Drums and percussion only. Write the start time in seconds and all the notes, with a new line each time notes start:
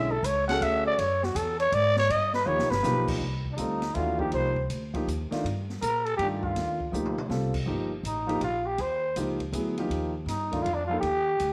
0.24 hi-hat pedal, ride
0.49 snare, ride
0.62 ride
0.99 ride
1.23 snare
1.36 hi-hat pedal, ride
1.60 ride
1.72 ride
1.96 snare
2.10 ride
2.33 snare
2.59 snare
2.72 snare
2.84 snare, hi-hat pedal
3.08 kick, crash
3.45 kick
3.58 hi-hat pedal, ride
3.82 snare, ride
3.95 ride
4.19 kick
4.32 ride
4.56 kick
4.70 hi-hat pedal, ride
4.94 kick, ride
5.08 hi-hat pedal, ride
5.32 snare, ride
5.46 ride
5.69 snare
5.82 hi-hat pedal, ride
6.06 ride
6.19 ride
6.43 kick
6.56 snare, ride
6.80 kick
6.94 hi-hat pedal
7.06 mid tom
7.18 mid tom
7.30 snare
7.54 kick, crash
8.05 hi-hat pedal, ride
8.29 ride
8.41 ride
8.78 ride
9.16 hi-hat pedal, ride
9.40 kick, ride
9.53 hi-hat pedal, ride
9.78 ride
9.91 ride
10.28 snare, hi-hat pedal, ride
10.52 kick, ride
10.66 ride
11.03 ride
11.39 hi-hat pedal, ride